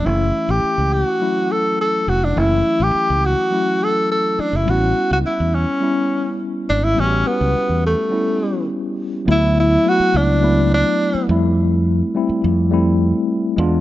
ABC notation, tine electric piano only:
X:1
M:4/4
L:1/8
Q:1/4=104
K:D
V:1 name="Tine electric piano"
[E,A,CE]3 z [F,A,CE]3 z | [E,A,CE]3 z [F,A,CE]3 z | [G,B,CE]3 z [G,B,CE]3 z | [G,B,CFG]3 z [G,B,CE]3 z |
[F,A,B,E] z [F,A,B,E] z [F,A,B,E]3 [G,A,=CE]- | [G,A,=CE] z [G,A,CE] z [G,A,CE]3 [^G,B,D=F] |]